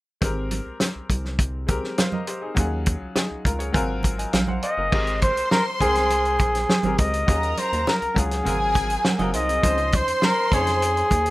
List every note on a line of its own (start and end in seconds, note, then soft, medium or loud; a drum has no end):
0.21 0.60 G#1 loud
0.21 1.31 G#3 medium
0.21 1.32 C4 medium
0.21 1.32 G4 medium
0.21 1.33 A#4 medium
0.21 kick medium
0.21 closed hi-hat medium
0.21 muted conga soft
0.51 closed hi-hat medium
0.51 muted conga medium
0.66 0.72 C2 soft
0.80 snare loud
0.80 closed hi-hat medium
0.80 high conga medium
0.96 1.01 C2 medium
1.10 1.80 C2 medium
1.10 kick medium
1.10 closed hi-hat medium
1.25 snare soft
1.39 kick medium
1.39 closed hi-hat medium
1.67 2.50 G#3 medium
1.67 2.51 C4 medium
1.67 1.98 G4 medium
1.67 1.99 A#4 medium
1.67 kick medium
1.67 closed hi-hat medium
1.67 muted conga soft
1.84 snare soft
1.98 2.12 C5 soft
1.98 2.12 F5 medium
1.98 snare loud
1.98 closed hi-hat medium
1.98 high conga medium
2.12 2.27 A#4 medium
2.12 2.27 D#5 medium
2.12 high conga medium
2.27 2.42 G4 soft
2.27 2.41 C5 medium
2.27 closed hi-hat medium
2.41 2.70 D#4 medium
2.41 2.57 G#4 medium
2.55 2.96 D#2 loud
2.55 3.66 F#3 medium
2.55 3.67 C#4 medium
2.55 3.16 F4 medium
2.55 3.14 G#4 medium
2.55 kick medium
2.55 closed hi-hat medium
2.55 muted conga soft
2.86 kick medium
2.86 closed hi-hat medium
2.86 muted conga medium
3.02 3.08 C#2 soft
3.16 3.44 D#4 soft
3.16 3.44 G#4 medium
3.16 snare loud
3.16 closed hi-hat medium
3.16 high conga medium
3.31 3.37 C#2 soft
3.45 3.71 C#2 medium
3.45 3.60 F4 medium
3.45 3.59 A#4 medium
3.45 3.73 A#5 medium
3.45 kick medium
3.45 closed hi-hat medium
3.45 low conga medium
3.59 3.88 G#4 soft
3.59 3.88 C#5 medium
3.59 closed hi-hat soft
3.73 4.26 G#1 medium
3.73 4.01 F#3 medium
3.73 4.02 C4 medium
3.73 4.02 F4 medium
3.73 4.03 A#4 medium
3.73 4.02 G#5 medium
3.73 kick medium
3.73 closed hi-hat medium
3.73 muted conga soft
3.73 low conga medium
4.03 kick medium
4.03 closed hi-hat medium
4.03 muted conga soft
4.18 4.47 D#5 soft
4.18 4.47 G#5 medium
4.18 closed hi-hat medium
4.33 4.59 A#1 medium
4.33 4.61 F5 medium
4.33 snare medium
4.33 closed hi-hat medium
4.33 high conga medium
4.47 4.62 C5 soft
4.47 4.62 F#5 medium
4.47 high conga medium
4.62 4.77 C5 soft
4.62 4.76 D#5 medium
4.62 5.18 D#5 medium
4.62 4.77 F5 medium
4.62 closed hi-hat medium
4.77 4.91 F#1 medium
4.77 4.92 A#4 medium
4.77 5.06 D#5 medium
4.91 5.31 G#1 loud
4.91 5.74 G#3 medium
4.91 5.75 C4 medium
4.91 5.75 G4 medium
4.91 5.76 A#4 medium
4.91 6.95 C5 medium
4.91 6.95 C6 loud
4.91 kick medium
4.91 crash medium
4.91 muted conga soft
5.07 closed hi-hat soft
5.22 5.50 C5 medium
5.22 kick medium
5.22 closed hi-hat medium
5.22 muted conga medium
5.37 5.43 C2 soft
5.37 closed hi-hat medium
5.51 5.65 A#4 medium
5.51 snare medium
5.51 high conga medium
5.79 6.41 C2 medium
5.79 6.76 G#3 medium
5.79 6.77 C4 medium
5.79 6.95 G#4 medium
5.79 6.78 A#4 medium
5.79 6.77 G5 medium
5.79 kick medium
5.79 closed hi-hat medium
5.79 low conga medium
5.95 snare soft
5.95 closed hi-hat soft
6.10 closed hi-hat medium
6.10 muted conga soft
6.25 closed hi-hat soft
6.39 6.65 A#1 loud
6.39 kick medium
6.39 closed hi-hat medium
6.39 muted conga soft
6.55 snare soft
6.55 closed hi-hat medium
6.69 snare medium
6.69 high conga medium
6.83 6.97 G#1 medium
6.83 7.25 G#3 medium
6.83 7.25 C4 medium
6.83 7.26 G4 medium
6.83 7.26 A#4 medium
6.83 closed hi-hat soft
6.83 high conga medium
6.98 7.24 C#2 loud
6.98 7.60 D#5 medium
6.98 kick medium
6.98 closed hi-hat medium
7.13 closed hi-hat medium
7.27 7.54 D#2 loud
7.27 8.10 F#3 medium
7.27 8.10 C#4 medium
7.27 8.11 F4 medium
7.27 8.11 G#4 medium
7.27 8.15 A#4 medium
7.27 8.15 A#5 loud
7.27 kick medium
7.27 closed hi-hat medium
7.27 muted conga soft
7.43 closed hi-hat soft
7.57 7.90 C5 medium
7.57 closed hi-hat medium
7.57 muted conga soft
7.73 7.85 D#2 medium
7.73 closed hi-hat medium
7.87 8.21 A#4 medium
7.87 snare medium
7.87 high conga medium
8.02 8.08 C#2 soft
8.02 closed hi-hat soft
8.14 8.42 C#2 medium
8.14 8.42 F#3 medium
8.14 8.45 C#4 medium
8.14 8.44 F4 medium
8.14 8.46 G#4 medium
8.14 kick medium
8.14 closed hi-hat medium
8.14 low conga medium
8.19 9.09 G#4 medium
8.31 snare soft
8.31 closed hi-hat soft
8.44 8.97 G#1 medium
8.44 9.14 F#3 medium
8.44 9.14 C4 medium
8.44 9.15 F4 medium
8.44 9.33 G#4 medium
8.44 9.15 A#4 medium
8.44 9.32 G#5 loud
8.44 closed hi-hat medium
8.44 low conga medium
8.75 kick medium
8.75 closed hi-hat medium
8.75 muted conga soft
8.90 closed hi-hat medium
9.05 9.19 A#4 medium
9.05 9.19 F#5 medium
9.05 snare medium
9.05 high conga medium
9.19 9.35 F#1 medium
9.19 9.60 F#3 medium
9.19 9.61 C4 medium
9.19 9.61 F4 medium
9.19 9.34 F#4 medium
9.19 9.62 A#4 medium
9.19 9.33 D#5 medium
9.19 closed hi-hat soft
9.19 high conga medium
9.33 9.60 C2 medium
9.33 9.48 D#4 medium
9.33 9.48 C5 medium
9.33 9.97 D#5 loud
9.33 closed hi-hat medium
9.49 9.77 C4 soft
9.49 9.77 G#4 medium
9.49 closed hi-hat medium
9.62 10.02 C#2 loud
9.62 10.45 F3 medium
9.62 10.46 C#4 medium
9.62 10.46 D#4 medium
9.62 11.30 C5 medium
9.62 10.47 C5 medium
9.62 11.30 C6 loud
9.62 kick medium
9.62 closed hi-hat medium
9.62 muted conga soft
9.78 closed hi-hat soft
9.92 10.26 C5 medium
9.92 kick medium
9.92 closed hi-hat medium
9.92 muted conga medium
10.08 10.13 F2 soft
10.08 closed hi-hat medium
10.22 10.55 A#4 medium
10.22 snare medium
10.22 high conga medium
10.51 11.03 F2 medium
10.51 11.30 F3 medium
10.51 11.30 C#4 medium
10.51 11.30 D#4 medium
10.51 11.30 G#4 medium
10.51 11.30 C#5 medium
10.51 kick medium
10.51 closed hi-hat medium
10.51 low conga medium
10.67 snare soft
10.67 closed hi-hat soft
10.82 closed hi-hat medium
10.97 closed hi-hat soft
11.11 11.30 D#2 medium
11.11 kick medium
11.11 closed hi-hat medium
11.11 muted conga soft
11.26 closed hi-hat medium